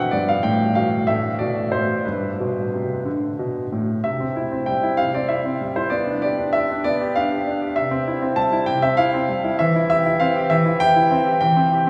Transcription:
0.00 0.15 B2 medium
0.00 0.15 D3 medium
0.00 0.15 F#3 medium
0.00 0.15 C4 soft
0.00 0.16 E5 medium
0.00 0.16 F#5 medium
0.00 0.15 G5 medium
0.11 0.38 G2 soft
0.11 1.04 B3 soft
0.11 0.28 D5 medium
0.29 0.45 F5 medium
0.43 0.70 A2 medium
0.43 0.76 G5 medium
0.75 1.02 B2 soft
0.75 1.08 F5 medium
1.07 1.34 A2 medium
1.07 2.02 A3 soft
1.07 1.40 E5 medium
1.39 1.67 B2 soft
1.39 1.73 D5 medium
1.72 2.00 A2 soft
1.72 2.06 C5 medium
2.05 2.33 G2 soft
2.05 4.00 D4 soft
2.05 3.05 B4 soft
2.40 2.67 B2 soft
2.73 2.99 C3 soft
3.05 3.32 D3 soft
3.39 3.66 B2 soft
3.72 3.98 A2 soft
4.04 4.97 C3 soft
4.04 4.68 E5 medium
4.20 4.46 C4 soft
4.36 4.62 E4 medium
4.52 4.77 C4 soft
4.66 4.93 G3 soft
4.66 4.98 G5 medium
4.83 5.08 E4 medium
4.97 5.88 C3 soft
4.97 5.14 F5 medium
5.14 5.39 C4 medium
5.14 5.30 D5 medium
5.29 5.54 E4 medium
5.29 5.75 E5 medium
5.45 5.70 C4 soft
5.61 5.85 G3 medium
5.76 5.91 E4 soft
5.76 5.91 C5 medium
5.90 6.84 B3 medium
5.90 6.20 D5 medium
6.07 6.32 D4 soft
6.22 6.47 G4 medium
6.22 6.53 D5 medium
6.38 6.63 D4 soft
6.53 6.78 G4 soft
6.53 6.84 E5 medium
6.70 6.94 D4 medium
6.84 7.73 B3 medium
6.84 7.15 D5 medium
7.01 7.25 G4 medium
7.16 7.40 D4 medium
7.16 7.76 F5 medium
7.31 7.55 G4 soft
7.47 7.71 D4 medium
7.61 7.76 G4 soft
7.76 8.66 C3 medium
7.76 8.37 E5 medium
7.91 8.15 C4 medium
8.08 8.31 E4 medium
8.22 8.46 C4 medium
8.36 8.61 G3 medium
8.36 8.67 A5 medium
8.52 8.76 E4 medium
8.66 9.56 C3 medium
8.66 8.82 G5 medium
8.82 9.06 C4 medium
8.82 8.97 E5 medium
8.97 9.22 E4 medium
8.97 9.58 F5 medium
9.14 9.37 C4 medium
9.29 9.53 G3 medium
9.44 9.59 E4 medium
9.59 10.49 E3 medium
9.59 9.88 E5 medium
9.76 9.99 E4 medium
9.90 10.14 G4 medium
9.90 10.20 E5 medium
10.06 10.29 E4 medium
10.20 10.44 C4 medium
10.20 10.50 F5 medium
10.36 10.59 G4 medium
10.50 11.39 E3 medium
10.50 10.80 E5 medium
10.65 10.89 E4 medium
10.80 11.05 G4 medium
10.80 11.39 G5 loud
10.96 11.20 E4 medium
11.11 11.35 C4 medium
11.26 11.41 G4 medium
11.41 11.90 E3 medium
11.41 11.90 G5 medium
11.56 11.81 C4 medium
11.72 11.90 G4 medium

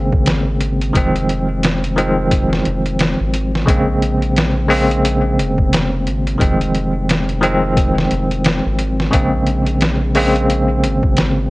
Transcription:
0.00 0.92 G#1 medium
0.00 0.96 C#3 loud
0.00 0.96 G#3 medium
0.00 0.96 A#3 medium
0.00 0.96 C4 loud
0.12 kick loud
0.26 snare loud
0.26 closed hi-hat medium
0.61 closed hi-hat medium
0.82 closed hi-hat soft
0.93 2.63 F1 loud
0.93 1.93 D#3 medium
0.93 1.93 F3 medium
0.93 1.94 G#3 medium
0.93 1.95 C4 loud
0.93 kick loud
0.93 closed hi-hat medium
1.16 closed hi-hat soft
1.29 closed hi-hat medium
1.63 snare loud
1.63 closed hi-hat medium
1.84 closed hi-hat soft
1.96 2.19 D#3 loud
1.96 2.20 F3 medium
1.96 2.20 G#3 medium
1.96 2.20 C4 loud
1.96 closed hi-hat medium
2.31 kick loud
2.31 closed hi-hat medium
2.53 snare medium
2.65 3.16 F1 medium
2.65 closed hi-hat medium
2.86 closed hi-hat soft
2.99 snare loud
2.99 closed hi-hat medium
3.21 3.65 G#1 loud
3.34 closed hi-hat medium
3.55 snare medium
3.66 5.40 A#1 loud
3.66 4.65 C#3 medium
3.66 4.66 G#3 medium
3.66 4.67 A#3 medium
3.66 kick loud
3.66 closed hi-hat medium
3.70 4.67 C4 loud
4.03 closed hi-hat medium
4.22 closed hi-hat soft
4.37 snare loud
4.37 closed hi-hat medium
4.68 4.91 C#3 loud
4.68 4.92 G#3 loud
4.68 4.92 A#3 loud
4.68 4.92 C4 loud
4.68 open hi-hat medium
4.91 closed hi-hat soft
5.05 closed hi-hat medium
5.38 6.08 F1 loud
5.38 closed hi-hat medium
5.58 kick medium
5.73 snare loud
5.73 closed hi-hat medium
6.06 6.37 G#1 medium
6.06 closed hi-hat medium
6.27 closed hi-hat soft
6.38 8.08 F1 loud
6.38 7.38 D#3 medium
6.38 7.39 F3 medium
6.38 7.39 G#3 medium
6.38 7.40 C4 loud
6.38 kick loud
6.38 closed hi-hat medium
6.61 closed hi-hat soft
6.75 closed hi-hat medium
7.09 snare loud
7.09 closed hi-hat medium
7.29 closed hi-hat soft
7.41 7.64 D#3 loud
7.41 7.64 F3 medium
7.41 7.65 G#3 loud
7.41 7.65 C4 loud
7.41 closed hi-hat medium
7.77 kick loud
7.77 closed hi-hat medium
7.98 snare medium
8.11 8.61 F1 medium
8.11 closed hi-hat medium
8.31 closed hi-hat soft
8.44 snare loud
8.44 closed hi-hat medium
8.66 9.11 G#1 loud
8.79 closed hi-hat medium
9.00 snare medium
9.11 10.86 A#1 loud
9.11 10.11 C#3 loud
9.11 10.11 G#3 medium
9.11 10.12 A#3 medium
9.11 10.12 C4 loud
9.11 kick loud
9.11 closed hi-hat medium
9.47 closed hi-hat medium
9.67 closed hi-hat soft
9.81 snare loud
9.81 closed hi-hat medium
10.15 10.38 C#3 loud
10.15 10.38 G#3 medium
10.15 10.38 A#3 loud
10.15 10.39 C4 loud
10.15 open hi-hat medium
10.36 closed hi-hat soft
10.50 closed hi-hat medium
10.84 11.50 G#1 medium
10.84 closed hi-hat medium
11.03 kick medium
11.17 snare loud
11.17 closed hi-hat medium

